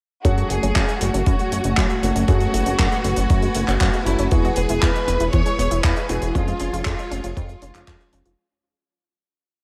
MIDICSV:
0, 0, Header, 1, 7, 480
1, 0, Start_track
1, 0, Key_signature, 3, "minor"
1, 0, Tempo, 508475
1, 234, Time_signature, 4, 2, 24, 8
1, 9094, End_track
2, 0, Start_track
2, 0, Title_t, "String machine"
2, 0, Program_c, 0, 50
2, 233, Note_on_c, 0, 57, 70
2, 233, Note_on_c, 0, 66, 77
2, 233, Note_on_c, 0, 73, 70
2, 233, Note_on_c, 0, 80, 85
2, 2134, Note_off_c, 0, 73, 0
2, 2152, Note_on_c, 0, 71, 69
2, 4036, Note_off_c, 0, 57, 0
2, 4036, Note_off_c, 0, 66, 0
2, 4074, Note_on_c, 0, 64, 75
2, 4075, Note_on_c, 0, 68, 72
2, 5955, Note_off_c, 0, 71, 0
2, 5975, Note_off_c, 0, 64, 0
2, 5975, Note_off_c, 0, 68, 0
2, 5993, Note_on_c, 0, 65, 79
2, 5993, Note_on_c, 0, 73, 72
2, 5994, Note_on_c, 0, 68, 68
2, 7876, Note_off_c, 0, 80, 0
2, 7894, Note_off_c, 0, 65, 0
2, 7894, Note_off_c, 0, 68, 0
2, 7894, Note_off_c, 0, 73, 0
2, 9094, End_track
3, 0, Start_track
3, 0, Title_t, "Violin section"
3, 0, Program_c, 1, 48
3, 232, Note_on_c, 1, 66, 89
3, 472, Note_on_c, 1, 68, 93
3, 473, Note_off_c, 1, 66, 0
3, 953, Note_off_c, 1, 68, 0
3, 953, Note_on_c, 1, 66, 89
3, 1901, Note_off_c, 1, 66, 0
3, 1912, Note_on_c, 1, 66, 101
3, 3795, Note_off_c, 1, 66, 0
3, 3830, Note_on_c, 1, 64, 85
3, 4072, Note_off_c, 1, 64, 0
3, 4072, Note_on_c, 1, 66, 97
3, 4296, Note_off_c, 1, 66, 0
3, 4307, Note_on_c, 1, 68, 96
3, 4550, Note_off_c, 1, 68, 0
3, 4551, Note_on_c, 1, 71, 103
3, 5032, Note_off_c, 1, 71, 0
3, 5032, Note_on_c, 1, 73, 111
3, 5479, Note_off_c, 1, 73, 0
3, 5514, Note_on_c, 1, 71, 98
3, 5754, Note_off_c, 1, 71, 0
3, 5754, Note_on_c, 1, 68, 96
3, 5994, Note_off_c, 1, 68, 0
3, 5994, Note_on_c, 1, 65, 98
3, 6463, Note_off_c, 1, 65, 0
3, 6475, Note_on_c, 1, 65, 93
3, 6921, Note_off_c, 1, 65, 0
3, 6954, Note_on_c, 1, 65, 83
3, 7636, Note_off_c, 1, 65, 0
3, 9094, End_track
4, 0, Start_track
4, 0, Title_t, "Grand piano"
4, 0, Program_c, 2, 0
4, 233, Note_on_c, 2, 68, 96
4, 234, Note_on_c, 2, 54, 85
4, 234, Note_on_c, 2, 57, 82
4, 234, Note_on_c, 2, 61, 79
4, 565, Note_off_c, 2, 54, 0
4, 565, Note_off_c, 2, 57, 0
4, 565, Note_off_c, 2, 61, 0
4, 565, Note_off_c, 2, 68, 0
4, 592, Note_on_c, 2, 57, 65
4, 592, Note_on_c, 2, 61, 64
4, 593, Note_on_c, 2, 54, 73
4, 593, Note_on_c, 2, 68, 78
4, 783, Note_off_c, 2, 54, 0
4, 783, Note_off_c, 2, 57, 0
4, 783, Note_off_c, 2, 61, 0
4, 783, Note_off_c, 2, 68, 0
4, 1913, Note_on_c, 2, 57, 80
4, 1913, Note_on_c, 2, 61, 75
4, 1913, Note_on_c, 2, 66, 91
4, 1914, Note_on_c, 2, 54, 84
4, 2124, Note_off_c, 2, 61, 0
4, 2124, Note_off_c, 2, 66, 0
4, 2125, Note_off_c, 2, 54, 0
4, 2125, Note_off_c, 2, 57, 0
4, 2154, Note_on_c, 2, 54, 91
4, 2154, Note_on_c, 2, 57, 83
4, 2154, Note_on_c, 2, 61, 82
4, 2154, Note_on_c, 2, 68, 98
4, 2485, Note_off_c, 2, 54, 0
4, 2485, Note_off_c, 2, 57, 0
4, 2485, Note_off_c, 2, 61, 0
4, 2485, Note_off_c, 2, 68, 0
4, 2513, Note_on_c, 2, 54, 74
4, 2513, Note_on_c, 2, 57, 68
4, 2513, Note_on_c, 2, 68, 81
4, 2514, Note_on_c, 2, 61, 67
4, 2703, Note_off_c, 2, 54, 0
4, 2703, Note_off_c, 2, 57, 0
4, 2703, Note_off_c, 2, 61, 0
4, 2703, Note_off_c, 2, 68, 0
4, 3834, Note_on_c, 2, 61, 77
4, 3835, Note_on_c, 2, 54, 85
4, 3835, Note_on_c, 2, 57, 80
4, 3835, Note_on_c, 2, 66, 96
4, 4045, Note_off_c, 2, 54, 0
4, 4045, Note_off_c, 2, 61, 0
4, 4045, Note_off_c, 2, 66, 0
4, 4046, Note_off_c, 2, 57, 0
4, 4073, Note_on_c, 2, 52, 93
4, 4073, Note_on_c, 2, 56, 86
4, 4073, Note_on_c, 2, 68, 102
4, 4074, Note_on_c, 2, 59, 85
4, 4405, Note_off_c, 2, 52, 0
4, 4405, Note_off_c, 2, 56, 0
4, 4405, Note_off_c, 2, 59, 0
4, 4405, Note_off_c, 2, 68, 0
4, 4432, Note_on_c, 2, 52, 77
4, 4432, Note_on_c, 2, 59, 66
4, 4433, Note_on_c, 2, 56, 70
4, 4433, Note_on_c, 2, 68, 82
4, 4623, Note_off_c, 2, 52, 0
4, 4623, Note_off_c, 2, 56, 0
4, 4623, Note_off_c, 2, 59, 0
4, 4623, Note_off_c, 2, 68, 0
4, 5753, Note_on_c, 2, 66, 97
4, 5754, Note_on_c, 2, 52, 89
4, 5754, Note_on_c, 2, 59, 74
4, 5755, Note_on_c, 2, 56, 81
4, 5965, Note_off_c, 2, 52, 0
4, 5965, Note_off_c, 2, 56, 0
4, 5965, Note_off_c, 2, 59, 0
4, 5965, Note_off_c, 2, 66, 0
4, 5993, Note_on_c, 2, 56, 83
4, 5994, Note_on_c, 2, 53, 90
4, 5994, Note_on_c, 2, 61, 84
4, 5994, Note_on_c, 2, 68, 102
4, 6325, Note_off_c, 2, 53, 0
4, 6325, Note_off_c, 2, 56, 0
4, 6325, Note_off_c, 2, 61, 0
4, 6325, Note_off_c, 2, 68, 0
4, 6353, Note_on_c, 2, 53, 75
4, 6354, Note_on_c, 2, 56, 66
4, 6354, Note_on_c, 2, 61, 68
4, 6354, Note_on_c, 2, 68, 83
4, 6543, Note_off_c, 2, 53, 0
4, 6543, Note_off_c, 2, 68, 0
4, 6544, Note_off_c, 2, 56, 0
4, 6544, Note_off_c, 2, 61, 0
4, 7192, Note_on_c, 2, 53, 75
4, 7192, Note_on_c, 2, 61, 72
4, 7192, Note_on_c, 2, 65, 87
4, 7193, Note_on_c, 2, 56, 68
4, 7884, Note_off_c, 2, 53, 0
4, 7884, Note_off_c, 2, 56, 0
4, 7884, Note_off_c, 2, 61, 0
4, 7884, Note_off_c, 2, 65, 0
4, 9094, End_track
5, 0, Start_track
5, 0, Title_t, "Synth arpeggio sound"
5, 0, Program_c, 3, 84
5, 233, Note_on_c, 3, 54, 92
5, 341, Note_off_c, 3, 54, 0
5, 356, Note_on_c, 3, 56, 73
5, 427, Note_off_c, 3, 56, 0
5, 475, Note_on_c, 3, 57, 75
5, 546, Note_off_c, 3, 57, 0
5, 594, Note_on_c, 3, 61, 72
5, 666, Note_off_c, 3, 61, 0
5, 714, Note_on_c, 3, 54, 98
5, 821, Note_off_c, 3, 54, 0
5, 834, Note_on_c, 3, 56, 75
5, 906, Note_off_c, 3, 56, 0
5, 954, Note_on_c, 3, 57, 72
5, 1025, Note_off_c, 3, 57, 0
5, 1075, Note_on_c, 3, 61, 75
5, 1146, Note_off_c, 3, 61, 0
5, 1194, Note_on_c, 3, 54, 98
5, 1301, Note_off_c, 3, 54, 0
5, 1315, Note_on_c, 3, 56, 71
5, 1386, Note_off_c, 3, 56, 0
5, 1435, Note_on_c, 3, 57, 77
5, 1506, Note_off_c, 3, 57, 0
5, 1554, Note_on_c, 3, 61, 74
5, 1625, Note_off_c, 3, 61, 0
5, 1673, Note_on_c, 3, 54, 98
5, 1781, Note_off_c, 3, 54, 0
5, 1793, Note_on_c, 3, 56, 73
5, 1865, Note_off_c, 3, 56, 0
5, 1914, Note_on_c, 3, 57, 76
5, 1986, Note_off_c, 3, 57, 0
5, 2033, Note_on_c, 3, 61, 73
5, 2105, Note_off_c, 3, 61, 0
5, 2152, Note_on_c, 3, 54, 89
5, 2261, Note_off_c, 3, 54, 0
5, 2272, Note_on_c, 3, 56, 78
5, 2345, Note_off_c, 3, 56, 0
5, 2392, Note_on_c, 3, 57, 76
5, 2465, Note_off_c, 3, 57, 0
5, 2511, Note_on_c, 3, 61, 72
5, 2584, Note_off_c, 3, 61, 0
5, 2631, Note_on_c, 3, 54, 95
5, 2740, Note_off_c, 3, 54, 0
5, 2752, Note_on_c, 3, 56, 77
5, 2825, Note_off_c, 3, 56, 0
5, 2873, Note_on_c, 3, 57, 74
5, 2945, Note_off_c, 3, 57, 0
5, 2993, Note_on_c, 3, 61, 75
5, 3065, Note_off_c, 3, 61, 0
5, 3114, Note_on_c, 3, 54, 96
5, 3222, Note_off_c, 3, 54, 0
5, 3234, Note_on_c, 3, 56, 75
5, 3306, Note_off_c, 3, 56, 0
5, 3354, Note_on_c, 3, 57, 73
5, 3426, Note_off_c, 3, 57, 0
5, 3474, Note_on_c, 3, 61, 75
5, 3545, Note_off_c, 3, 61, 0
5, 3594, Note_on_c, 3, 54, 97
5, 3702, Note_off_c, 3, 54, 0
5, 3714, Note_on_c, 3, 56, 74
5, 3786, Note_off_c, 3, 56, 0
5, 3835, Note_on_c, 3, 57, 78
5, 3906, Note_off_c, 3, 57, 0
5, 3956, Note_on_c, 3, 61, 76
5, 4027, Note_off_c, 3, 61, 0
5, 4076, Note_on_c, 3, 52, 96
5, 4182, Note_off_c, 3, 52, 0
5, 4196, Note_on_c, 3, 56, 80
5, 4267, Note_off_c, 3, 56, 0
5, 4315, Note_on_c, 3, 59, 76
5, 4386, Note_off_c, 3, 59, 0
5, 4434, Note_on_c, 3, 64, 72
5, 4506, Note_off_c, 3, 64, 0
5, 4552, Note_on_c, 3, 52, 102
5, 4661, Note_off_c, 3, 52, 0
5, 4675, Note_on_c, 3, 56, 73
5, 4746, Note_off_c, 3, 56, 0
5, 4792, Note_on_c, 3, 59, 76
5, 4865, Note_off_c, 3, 59, 0
5, 4913, Note_on_c, 3, 64, 74
5, 4985, Note_off_c, 3, 64, 0
5, 5033, Note_on_c, 3, 52, 103
5, 5141, Note_off_c, 3, 52, 0
5, 5153, Note_on_c, 3, 56, 75
5, 5225, Note_off_c, 3, 56, 0
5, 5273, Note_on_c, 3, 59, 73
5, 5345, Note_off_c, 3, 59, 0
5, 5393, Note_on_c, 3, 64, 75
5, 5465, Note_off_c, 3, 64, 0
5, 5513, Note_on_c, 3, 52, 96
5, 5621, Note_off_c, 3, 52, 0
5, 5633, Note_on_c, 3, 56, 71
5, 5705, Note_off_c, 3, 56, 0
5, 5752, Note_on_c, 3, 59, 75
5, 5825, Note_off_c, 3, 59, 0
5, 5874, Note_on_c, 3, 64, 74
5, 5946, Note_off_c, 3, 64, 0
5, 5993, Note_on_c, 3, 53, 93
5, 6101, Note_off_c, 3, 53, 0
5, 6114, Note_on_c, 3, 56, 77
5, 6186, Note_off_c, 3, 56, 0
5, 6233, Note_on_c, 3, 61, 78
5, 6305, Note_off_c, 3, 61, 0
5, 6355, Note_on_c, 3, 65, 76
5, 6426, Note_off_c, 3, 65, 0
5, 6474, Note_on_c, 3, 53, 95
5, 6582, Note_off_c, 3, 53, 0
5, 6594, Note_on_c, 3, 56, 75
5, 6666, Note_off_c, 3, 56, 0
5, 6715, Note_on_c, 3, 61, 74
5, 6786, Note_off_c, 3, 61, 0
5, 6833, Note_on_c, 3, 65, 73
5, 6905, Note_off_c, 3, 65, 0
5, 6954, Note_on_c, 3, 53, 103
5, 7061, Note_off_c, 3, 53, 0
5, 7075, Note_on_c, 3, 56, 76
5, 7146, Note_off_c, 3, 56, 0
5, 7196, Note_on_c, 3, 61, 71
5, 7266, Note_off_c, 3, 61, 0
5, 7315, Note_on_c, 3, 65, 75
5, 7386, Note_off_c, 3, 65, 0
5, 7435, Note_on_c, 3, 53, 98
5, 7542, Note_off_c, 3, 53, 0
5, 7554, Note_on_c, 3, 56, 74
5, 7626, Note_off_c, 3, 56, 0
5, 7675, Note_on_c, 3, 61, 77
5, 7746, Note_off_c, 3, 61, 0
5, 7795, Note_on_c, 3, 65, 76
5, 7866, Note_off_c, 3, 65, 0
5, 9094, End_track
6, 0, Start_track
6, 0, Title_t, "Analog synth bass"
6, 0, Program_c, 4, 38
6, 234, Note_on_c, 4, 42, 91
6, 408, Note_off_c, 4, 42, 0
6, 474, Note_on_c, 4, 30, 87
6, 561, Note_off_c, 4, 30, 0
6, 592, Note_on_c, 4, 30, 96
6, 680, Note_off_c, 4, 30, 0
6, 714, Note_on_c, 4, 42, 89
6, 801, Note_off_c, 4, 42, 0
6, 953, Note_on_c, 4, 30, 90
6, 1040, Note_off_c, 4, 30, 0
6, 1073, Note_on_c, 4, 30, 100
6, 1160, Note_off_c, 4, 30, 0
6, 1193, Note_on_c, 4, 42, 85
6, 1280, Note_off_c, 4, 42, 0
6, 1431, Note_on_c, 4, 30, 80
6, 1520, Note_off_c, 4, 30, 0
6, 1553, Note_on_c, 4, 30, 95
6, 1640, Note_off_c, 4, 30, 0
6, 1675, Note_on_c, 4, 42, 100
6, 1761, Note_off_c, 4, 42, 0
6, 1914, Note_on_c, 4, 30, 81
6, 2001, Note_off_c, 4, 30, 0
6, 2032, Note_on_c, 4, 30, 105
6, 2120, Note_off_c, 4, 30, 0
6, 2154, Note_on_c, 4, 42, 97
6, 2327, Note_off_c, 4, 42, 0
6, 2393, Note_on_c, 4, 30, 85
6, 2480, Note_off_c, 4, 30, 0
6, 2513, Note_on_c, 4, 30, 91
6, 2600, Note_off_c, 4, 30, 0
6, 2635, Note_on_c, 4, 42, 89
6, 2721, Note_off_c, 4, 42, 0
6, 2874, Note_on_c, 4, 30, 88
6, 2961, Note_off_c, 4, 30, 0
6, 2992, Note_on_c, 4, 30, 96
6, 3080, Note_off_c, 4, 30, 0
6, 3115, Note_on_c, 4, 42, 97
6, 3288, Note_off_c, 4, 42, 0
6, 3353, Note_on_c, 4, 30, 98
6, 3440, Note_off_c, 4, 30, 0
6, 3473, Note_on_c, 4, 30, 79
6, 3560, Note_off_c, 4, 30, 0
6, 3594, Note_on_c, 4, 42, 92
6, 3681, Note_off_c, 4, 42, 0
6, 3833, Note_on_c, 4, 30, 98
6, 3920, Note_off_c, 4, 30, 0
6, 3953, Note_on_c, 4, 30, 77
6, 4040, Note_off_c, 4, 30, 0
6, 4074, Note_on_c, 4, 40, 95
6, 4248, Note_off_c, 4, 40, 0
6, 4312, Note_on_c, 4, 28, 89
6, 4400, Note_off_c, 4, 28, 0
6, 4432, Note_on_c, 4, 28, 96
6, 4519, Note_off_c, 4, 28, 0
6, 4554, Note_on_c, 4, 40, 96
6, 4641, Note_off_c, 4, 40, 0
6, 4791, Note_on_c, 4, 28, 91
6, 4879, Note_off_c, 4, 28, 0
6, 4911, Note_on_c, 4, 28, 94
6, 4999, Note_off_c, 4, 28, 0
6, 5035, Note_on_c, 4, 40, 82
6, 5121, Note_off_c, 4, 40, 0
6, 5271, Note_on_c, 4, 28, 86
6, 5359, Note_off_c, 4, 28, 0
6, 5393, Note_on_c, 4, 28, 91
6, 5480, Note_off_c, 4, 28, 0
6, 5515, Note_on_c, 4, 40, 94
6, 5601, Note_off_c, 4, 40, 0
6, 5754, Note_on_c, 4, 28, 86
6, 5841, Note_off_c, 4, 28, 0
6, 5875, Note_on_c, 4, 28, 99
6, 5961, Note_off_c, 4, 28, 0
6, 5995, Note_on_c, 4, 41, 98
6, 6168, Note_off_c, 4, 41, 0
6, 6234, Note_on_c, 4, 29, 89
6, 6321, Note_off_c, 4, 29, 0
6, 6353, Note_on_c, 4, 29, 99
6, 6440, Note_off_c, 4, 29, 0
6, 6475, Note_on_c, 4, 41, 91
6, 6561, Note_off_c, 4, 41, 0
6, 6714, Note_on_c, 4, 29, 91
6, 6801, Note_off_c, 4, 29, 0
6, 6835, Note_on_c, 4, 29, 97
6, 6921, Note_off_c, 4, 29, 0
6, 6955, Note_on_c, 4, 41, 93
6, 7128, Note_off_c, 4, 41, 0
6, 7194, Note_on_c, 4, 29, 90
6, 7281, Note_off_c, 4, 29, 0
6, 7314, Note_on_c, 4, 29, 81
6, 7401, Note_off_c, 4, 29, 0
6, 7434, Note_on_c, 4, 41, 99
6, 7521, Note_off_c, 4, 41, 0
6, 7674, Note_on_c, 4, 29, 97
6, 7761, Note_off_c, 4, 29, 0
6, 7794, Note_on_c, 4, 29, 84
6, 7881, Note_off_c, 4, 29, 0
6, 9094, End_track
7, 0, Start_track
7, 0, Title_t, "Drums"
7, 234, Note_on_c, 9, 36, 106
7, 235, Note_on_c, 9, 42, 67
7, 328, Note_off_c, 9, 36, 0
7, 329, Note_off_c, 9, 42, 0
7, 356, Note_on_c, 9, 42, 42
7, 451, Note_off_c, 9, 42, 0
7, 473, Note_on_c, 9, 42, 90
7, 568, Note_off_c, 9, 42, 0
7, 596, Note_on_c, 9, 42, 59
7, 690, Note_off_c, 9, 42, 0
7, 714, Note_on_c, 9, 36, 95
7, 714, Note_on_c, 9, 39, 112
7, 720, Note_on_c, 9, 42, 63
7, 808, Note_off_c, 9, 39, 0
7, 809, Note_off_c, 9, 36, 0
7, 814, Note_off_c, 9, 42, 0
7, 837, Note_on_c, 9, 42, 41
7, 931, Note_off_c, 9, 42, 0
7, 954, Note_on_c, 9, 42, 103
7, 1048, Note_off_c, 9, 42, 0
7, 1077, Note_on_c, 9, 42, 63
7, 1172, Note_off_c, 9, 42, 0
7, 1193, Note_on_c, 9, 42, 69
7, 1194, Note_on_c, 9, 36, 111
7, 1287, Note_off_c, 9, 42, 0
7, 1289, Note_off_c, 9, 36, 0
7, 1314, Note_on_c, 9, 42, 42
7, 1409, Note_off_c, 9, 42, 0
7, 1436, Note_on_c, 9, 42, 95
7, 1530, Note_off_c, 9, 42, 0
7, 1548, Note_on_c, 9, 42, 64
7, 1642, Note_off_c, 9, 42, 0
7, 1665, Note_on_c, 9, 42, 61
7, 1672, Note_on_c, 9, 39, 102
7, 1674, Note_on_c, 9, 36, 98
7, 1760, Note_off_c, 9, 42, 0
7, 1767, Note_off_c, 9, 39, 0
7, 1769, Note_off_c, 9, 36, 0
7, 1793, Note_on_c, 9, 42, 42
7, 1888, Note_off_c, 9, 42, 0
7, 1918, Note_on_c, 9, 42, 89
7, 2012, Note_off_c, 9, 42, 0
7, 2037, Note_on_c, 9, 42, 62
7, 2131, Note_off_c, 9, 42, 0
7, 2152, Note_on_c, 9, 42, 61
7, 2154, Note_on_c, 9, 36, 110
7, 2247, Note_off_c, 9, 42, 0
7, 2249, Note_off_c, 9, 36, 0
7, 2270, Note_on_c, 9, 42, 43
7, 2364, Note_off_c, 9, 42, 0
7, 2397, Note_on_c, 9, 42, 102
7, 2491, Note_off_c, 9, 42, 0
7, 2511, Note_on_c, 9, 42, 59
7, 2606, Note_off_c, 9, 42, 0
7, 2634, Note_on_c, 9, 42, 62
7, 2635, Note_on_c, 9, 36, 101
7, 2637, Note_on_c, 9, 39, 105
7, 2729, Note_off_c, 9, 36, 0
7, 2729, Note_off_c, 9, 42, 0
7, 2732, Note_off_c, 9, 39, 0
7, 2756, Note_on_c, 9, 42, 41
7, 2851, Note_off_c, 9, 42, 0
7, 2873, Note_on_c, 9, 42, 86
7, 2968, Note_off_c, 9, 42, 0
7, 2987, Note_on_c, 9, 42, 63
7, 3081, Note_off_c, 9, 42, 0
7, 3113, Note_on_c, 9, 42, 67
7, 3115, Note_on_c, 9, 36, 117
7, 3208, Note_off_c, 9, 42, 0
7, 3209, Note_off_c, 9, 36, 0
7, 3232, Note_on_c, 9, 42, 49
7, 3326, Note_off_c, 9, 42, 0
7, 3347, Note_on_c, 9, 42, 104
7, 3441, Note_off_c, 9, 42, 0
7, 3474, Note_on_c, 9, 39, 37
7, 3477, Note_on_c, 9, 42, 58
7, 3568, Note_off_c, 9, 39, 0
7, 3572, Note_off_c, 9, 42, 0
7, 3588, Note_on_c, 9, 42, 61
7, 3594, Note_on_c, 9, 36, 100
7, 3595, Note_on_c, 9, 39, 117
7, 3682, Note_off_c, 9, 42, 0
7, 3689, Note_off_c, 9, 36, 0
7, 3690, Note_off_c, 9, 39, 0
7, 3714, Note_on_c, 9, 42, 42
7, 3809, Note_off_c, 9, 42, 0
7, 3836, Note_on_c, 9, 42, 97
7, 3931, Note_off_c, 9, 42, 0
7, 3952, Note_on_c, 9, 42, 59
7, 4047, Note_off_c, 9, 42, 0
7, 4071, Note_on_c, 9, 42, 65
7, 4075, Note_on_c, 9, 36, 121
7, 4166, Note_off_c, 9, 42, 0
7, 4169, Note_off_c, 9, 36, 0
7, 4199, Note_on_c, 9, 42, 44
7, 4293, Note_off_c, 9, 42, 0
7, 4304, Note_on_c, 9, 42, 91
7, 4399, Note_off_c, 9, 42, 0
7, 4428, Note_on_c, 9, 42, 67
7, 4522, Note_off_c, 9, 42, 0
7, 4555, Note_on_c, 9, 36, 102
7, 4555, Note_on_c, 9, 39, 111
7, 4556, Note_on_c, 9, 42, 67
7, 4649, Note_off_c, 9, 36, 0
7, 4649, Note_off_c, 9, 39, 0
7, 4650, Note_off_c, 9, 42, 0
7, 4679, Note_on_c, 9, 42, 40
7, 4773, Note_off_c, 9, 42, 0
7, 4795, Note_on_c, 9, 42, 84
7, 4890, Note_off_c, 9, 42, 0
7, 4910, Note_on_c, 9, 42, 54
7, 5005, Note_off_c, 9, 42, 0
7, 5031, Note_on_c, 9, 42, 63
7, 5035, Note_on_c, 9, 36, 120
7, 5126, Note_off_c, 9, 42, 0
7, 5129, Note_off_c, 9, 36, 0
7, 5153, Note_on_c, 9, 42, 47
7, 5247, Note_off_c, 9, 42, 0
7, 5280, Note_on_c, 9, 42, 100
7, 5374, Note_off_c, 9, 42, 0
7, 5392, Note_on_c, 9, 42, 59
7, 5486, Note_off_c, 9, 42, 0
7, 5512, Note_on_c, 9, 39, 127
7, 5515, Note_on_c, 9, 36, 108
7, 5516, Note_on_c, 9, 42, 59
7, 5606, Note_off_c, 9, 39, 0
7, 5610, Note_off_c, 9, 36, 0
7, 5611, Note_off_c, 9, 42, 0
7, 5630, Note_on_c, 9, 42, 39
7, 5724, Note_off_c, 9, 42, 0
7, 5751, Note_on_c, 9, 42, 90
7, 5846, Note_off_c, 9, 42, 0
7, 5870, Note_on_c, 9, 42, 58
7, 5964, Note_off_c, 9, 42, 0
7, 5995, Note_on_c, 9, 36, 120
7, 5996, Note_on_c, 9, 42, 63
7, 6090, Note_off_c, 9, 36, 0
7, 6091, Note_off_c, 9, 42, 0
7, 6115, Note_on_c, 9, 42, 44
7, 6209, Note_off_c, 9, 42, 0
7, 6227, Note_on_c, 9, 42, 102
7, 6321, Note_off_c, 9, 42, 0
7, 6360, Note_on_c, 9, 42, 64
7, 6454, Note_off_c, 9, 42, 0
7, 6468, Note_on_c, 9, 39, 118
7, 6470, Note_on_c, 9, 42, 59
7, 6475, Note_on_c, 9, 36, 108
7, 6562, Note_off_c, 9, 39, 0
7, 6565, Note_off_c, 9, 42, 0
7, 6570, Note_off_c, 9, 36, 0
7, 6598, Note_on_c, 9, 42, 44
7, 6692, Note_off_c, 9, 42, 0
7, 6717, Note_on_c, 9, 42, 98
7, 6812, Note_off_c, 9, 42, 0
7, 6834, Note_on_c, 9, 42, 53
7, 6929, Note_off_c, 9, 42, 0
7, 6956, Note_on_c, 9, 36, 118
7, 6958, Note_on_c, 9, 42, 65
7, 7050, Note_off_c, 9, 36, 0
7, 7053, Note_off_c, 9, 42, 0
7, 7073, Note_on_c, 9, 42, 46
7, 7167, Note_off_c, 9, 42, 0
7, 7193, Note_on_c, 9, 42, 102
7, 7287, Note_off_c, 9, 42, 0
7, 7312, Note_on_c, 9, 42, 57
7, 7314, Note_on_c, 9, 39, 38
7, 7407, Note_off_c, 9, 42, 0
7, 7409, Note_off_c, 9, 39, 0
7, 7435, Note_on_c, 9, 36, 105
7, 7435, Note_on_c, 9, 42, 62
7, 7441, Note_on_c, 9, 39, 124
7, 7529, Note_off_c, 9, 42, 0
7, 7530, Note_off_c, 9, 36, 0
7, 7535, Note_off_c, 9, 39, 0
7, 7558, Note_on_c, 9, 42, 42
7, 7652, Note_off_c, 9, 42, 0
7, 7673, Note_on_c, 9, 42, 96
7, 7768, Note_off_c, 9, 42, 0
7, 7794, Note_on_c, 9, 42, 54
7, 7888, Note_off_c, 9, 42, 0
7, 9094, End_track
0, 0, End_of_file